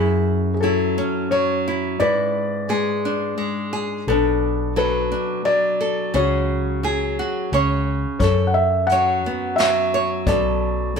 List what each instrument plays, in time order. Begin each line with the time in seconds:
Already playing: fingered electric bass F#2, nylon-string guitar F#2 E4, felt piano E4 G#4
0.54 felt piano G#4
0.60 nylon-string guitar F#3 E4, felt piano A4
0.98 nylon-string guitar C#4
1.31 nylon-string guitar F#3, felt piano C#5
1.68 nylon-string guitar E4
2.00 nylon-string guitar G#2 E4, fingered electric bass G#2, felt piano B4 D5
2.69 nylon-string guitar G#3 G#4
3.05 nylon-string guitar D4
3.38 nylon-string guitar G#3
3.73 nylon-string guitar G#4
4.07 fingered electric bass B1, nylon-string guitar B2 D4, felt piano D4 A4
4.76 nylon-string guitar F#3 A4, felt piano B4
5.12 nylon-string guitar D4
5.45 nylon-string guitar F#3, felt piano D5
5.81 nylon-string guitar A4
6.14 fingered electric bass C#2, nylon-string guitar C#3 G#4, felt piano F#4 C#5
6.83 nylon-string guitar F#3 G#4
7.19 nylon-string guitar F#4
7.52 fingered electric bass C#2, nylon-string guitar C#3 C#5
8.19 fingered electric bass F#2, nylon-string guitar F#2, felt piano A4 C#5, kick, closed hi-hat
8.23 nylon-string guitar A4
8.47 felt piano F#5
8.54 felt piano E5
8.87 felt piano F#5, closed hi-hat
8.92 nylon-string guitar F#3 C#5
9.26 nylon-string guitar B3
9.56 nylon-string guitar F#3, felt piano E5, snare, closed hi-hat
9.94 nylon-string guitar C#5
10.27 fingered electric bass B1, nylon-string guitar B2 A4, felt piano A4 D5, kick, closed hi-hat
10.96 nylon-string guitar F#3, closed hi-hat